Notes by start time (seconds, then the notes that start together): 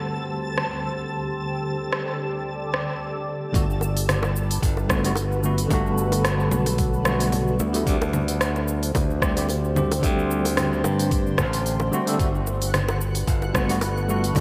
Already playing: D2 D3 G3 A3 C4 G4 A4 C5 A5
0.58 cross-stick
1.39 D5
1.93 cross-stick
2.74 cross-stick
3.52 G1 D3 G3 A3 B3 F#4 A4 B4, kick, open hi-hat, shaker
3.70 shaker
3.81 high bongo, shaker
3.97 open hi-hat, shaker
4.09 cross-stick, open hi-hat, low conga, shaker
4.23 high bongo, shaker
4.36 shaker
4.51 open hi-hat, shaker
4.62 G1, kick, open hi-hat, shaker
4.77 high bongo, shaker
4.88 D3 G3 A3 B3 F#4, kick, cross-stick, low conga, shaker
5.03 D3 G3 A3 B3 F#4, open hi-hat, shaker
5.15 open hi-hat, high bongo, shaker
5.32 shaker
5.43 D3 G3 A3 B3 F#4, shaker
5.58 open hi-hat, shaker
5.68 G1 D3 G3 A3, kick, open hi-hat, high bongo, low conga, shaker
5.73 B3 F#4
5.86 shaker
5.98 shaker
6.12 open hi-hat, high bongo, shaker
6.25 cross-stick, open hi-hat, shaker
6.40 shaker
6.51 B1, low conga, shaker
6.66 open hi-hat, high bongo, shaker
6.78 kick, open hi-hat, shaker
6.94 shaker
7.03 D3 G3 A3, cross-stick, high bongo, shaker
7.08 B3 F#4
7.20 open hi-hat, shaker
7.32 open hi-hat, low conga, shaker
7.48 shaker
7.59 D2, high bongo, shaker
7.73 D3 G3 A3 B3 E4, open hi-hat, shaker
7.85 D2 D3 G3 A3 C4 D4 G4 C5, kick, open hi-hat, shaker
8.02 high bongo, shaker
8.13 low conga, shaker
8.28 open hi-hat, shaker
8.41 cross-stick, open hi-hat, shaker
8.56 high bongo, shaker
8.68 shaker
8.83 open hi-hat, shaker
8.95 D2, kick, open hi-hat, high bongo, low conga, shaker
9.10 shaker
9.20 D3 G3 A3 C4 G4, kick, cross-stick, shaker
9.35 D3 G3 A3 C4 G4, open hi-hat, shaker
9.49 open hi-hat, high bongo, shaker
9.65 shaker
9.75 D3 G3 A3 C4 G4, low conga, shaker
9.91 open hi-hat, high bongo, shaker
10.00 D2 D3 G3 A3, kick, open hi-hat, shaker
10.05 C4 G4
10.19 shaker
10.31 shaker
10.45 open hi-hat, high bongo, shaker
10.57 cross-stick, open hi-hat, low conga, shaker
10.73 shaker
10.84 G2, high bongo, shaker
10.99 open hi-hat, shaker
11.11 kick, open hi-hat, shaker
11.27 shaker
11.38 A1, kick, cross-stick, high bongo, low conga, shaker
11.53 open hi-hat, shaker
11.66 open hi-hat, shaker
11.80 high bongo, shaker
11.91 D3 G3 A3 C4 F#4, shaker
12.06 D3 G3 A3 C4 A4, open hi-hat, shaker
12.18 G1 D3 G3 A3 B3 F#4 A4 B4 F#5, kick, open hi-hat, shaker
12.35 shaker
12.47 high bongo, shaker
12.62 open hi-hat, shaker
12.74 cross-stick, open hi-hat, low conga, shaker
12.89 high bongo, shaker
13.01 shaker
13.15 open hi-hat, shaker
13.27 G1, kick, open hi-hat, shaker
13.42 high bongo, shaker
13.54 D3 G3 A3 B3 F#4, kick, cross-stick, low conga, shaker
13.68 D3 G3 A3 B3 F#4, open hi-hat, shaker
13.81 open hi-hat, high bongo, shaker
13.97 shaker
14.07 D3 G3 A3 B3 F#4, shaker
14.24 open hi-hat, shaker
14.33 G1 D3 G3 A3, kick, open hi-hat, high bongo, low conga, shaker
14.37 B3